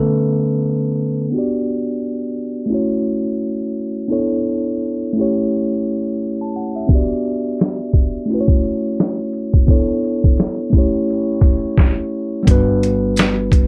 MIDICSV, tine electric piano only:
0, 0, Header, 1, 2, 480
1, 0, Start_track
1, 0, Tempo, 697674
1, 901, Time_signature, 4, 2, 24, 8
1, 9408, End_track
2, 0, Start_track
2, 0, Title_t, "Tine electric piano"
2, 0, Program_c, 0, 4
2, 0, Control_c, 0, 64, 127
2, 0, Note_on_c, 0, 50, 63
2, 0, Note_on_c, 0, 57, 54
2, 0, Note_on_c, 0, 59, 75
2, 0, Note_on_c, 0, 61, 66
2, 0, Note_on_c, 0, 69, 78
2, 0, Note_on_c, 0, 71, 101
2, 642, Note_off_c, 0, 69, 0
2, 643, Note_off_c, 0, 57, 0
2, 877, Note_off_c, 0, 50, 0
2, 882, Note_off_c, 0, 61, 0
2, 898, Note_off_c, 0, 59, 0
2, 898, Note_on_c, 0, 59, 64
2, 909, Control_c, 0, 64, 0
2, 910, Note_on_c, 0, 62, 63
2, 912, Note_off_c, 0, 71, 0
2, 923, Note_on_c, 0, 66, 65
2, 939, Note_on_c, 0, 67, 64
2, 953, Note_on_c, 0, 74, 71
2, 1014, Control_c, 0, 64, 127
2, 1829, Note_on_c, 0, 57, 72
2, 1840, Note_off_c, 0, 59, 0
2, 1844, Note_on_c, 0, 61, 62
2, 1847, Note_off_c, 0, 62, 0
2, 1853, Note_off_c, 0, 66, 0
2, 1858, Note_on_c, 0, 64, 64
2, 1862, Note_off_c, 0, 67, 0
2, 1869, Note_off_c, 0, 74, 0
2, 1870, Control_c, 0, 64, 0
2, 1874, Note_on_c, 0, 66, 66
2, 1887, Note_on_c, 0, 73, 70
2, 1984, Control_c, 0, 64, 127
2, 2786, Note_off_c, 0, 57, 0
2, 2793, Note_off_c, 0, 61, 0
2, 2800, Note_off_c, 0, 64, 0
2, 2807, Note_on_c, 0, 59, 67
2, 2808, Note_off_c, 0, 66, 0
2, 2815, Note_off_c, 0, 73, 0
2, 2815, Note_on_c, 0, 62, 73
2, 2821, Note_on_c, 0, 64, 65
2, 2829, Note_on_c, 0, 69, 66
2, 2831, Control_c, 0, 64, 0
2, 2838, Note_on_c, 0, 73, 78
2, 2959, Control_c, 0, 64, 127
2, 3529, Note_on_c, 0, 57, 82
2, 3534, Note_off_c, 0, 59, 0
2, 3538, Note_off_c, 0, 62, 0
2, 3541, Note_off_c, 0, 64, 0
2, 3545, Note_off_c, 0, 69, 0
2, 3546, Note_on_c, 0, 61, 67
2, 3549, Control_c, 0, 64, 0
2, 3550, Note_off_c, 0, 73, 0
2, 3560, Note_on_c, 0, 64, 64
2, 3575, Note_on_c, 0, 67, 69
2, 3587, Note_on_c, 0, 73, 87
2, 3672, Control_c, 0, 64, 127
2, 4412, Note_on_c, 0, 81, 59
2, 4506, Note_off_c, 0, 81, 0
2, 4514, Note_on_c, 0, 78, 59
2, 4634, Note_off_c, 0, 78, 0
2, 4649, Note_on_c, 0, 76, 60
2, 4711, Note_off_c, 0, 57, 0
2, 4720, Note_off_c, 0, 61, 0
2, 4727, Note_off_c, 0, 64, 0
2, 4727, Note_on_c, 0, 59, 74
2, 4734, Note_off_c, 0, 67, 0
2, 4741, Note_off_c, 0, 73, 0
2, 4741, Note_on_c, 0, 62, 60
2, 4751, Control_c, 0, 64, 0
2, 4753, Note_on_c, 0, 66, 62
2, 4769, Note_on_c, 0, 67, 68
2, 4783, Note_on_c, 0, 74, 78
2, 4870, Note_off_c, 0, 76, 0
2, 4876, Control_c, 0, 64, 127
2, 5675, Note_off_c, 0, 59, 0
2, 5681, Note_on_c, 0, 57, 77
2, 5682, Note_off_c, 0, 62, 0
2, 5688, Note_off_c, 0, 66, 0
2, 5696, Note_off_c, 0, 67, 0
2, 5697, Note_on_c, 0, 61, 61
2, 5703, Note_off_c, 0, 74, 0
2, 5709, Control_c, 0, 64, 0
2, 5711, Note_on_c, 0, 64, 65
2, 5726, Note_on_c, 0, 66, 61
2, 5740, Note_on_c, 0, 71, 64
2, 5770, Note_off_c, 0, 71, 0
2, 5783, Note_on_c, 0, 73, 81
2, 5843, Control_c, 0, 64, 127
2, 6632, Note_off_c, 0, 57, 0
2, 6640, Note_off_c, 0, 61, 0
2, 6647, Note_off_c, 0, 64, 0
2, 6651, Note_on_c, 0, 59, 78
2, 6655, Note_off_c, 0, 66, 0
2, 6659, Note_on_c, 0, 62, 64
2, 6664, Note_on_c, 0, 64, 60
2, 6669, Control_c, 0, 64, 0
2, 6670, Note_off_c, 0, 73, 0
2, 6672, Note_on_c, 0, 69, 68
2, 6678, Note_on_c, 0, 73, 84
2, 6802, Control_c, 0, 64, 127
2, 7362, Note_on_c, 0, 57, 75
2, 7376, Note_off_c, 0, 59, 0
2, 7376, Note_on_c, 0, 61, 71
2, 7380, Note_off_c, 0, 62, 0
2, 7383, Note_off_c, 0, 64, 0
2, 7387, Note_off_c, 0, 69, 0
2, 7390, Note_off_c, 0, 73, 0
2, 7390, Note_on_c, 0, 64, 73
2, 7392, Control_c, 0, 64, 0
2, 7406, Note_on_c, 0, 67, 69
2, 7418, Note_on_c, 0, 73, 78
2, 7514, Control_c, 0, 64, 127
2, 8111, Control_c, 0, 64, 0
2, 8548, Note_off_c, 0, 57, 0
2, 8550, Note_on_c, 0, 55, 76
2, 8554, Note_off_c, 0, 61, 0
2, 8562, Note_off_c, 0, 64, 0
2, 8563, Note_on_c, 0, 59, 78
2, 8570, Note_off_c, 0, 67, 0
2, 8576, Note_off_c, 0, 73, 0
2, 8578, Note_on_c, 0, 62, 69
2, 8592, Note_on_c, 0, 66, 73
2, 8606, Note_on_c, 0, 71, 91
2, 8712, Control_c, 0, 64, 127
2, 9408, Note_off_c, 0, 55, 0
2, 9408, Note_off_c, 0, 59, 0
2, 9408, Note_off_c, 0, 62, 0
2, 9408, Note_off_c, 0, 66, 0
2, 9408, Note_off_c, 0, 71, 0
2, 9408, End_track
0, 0, End_of_file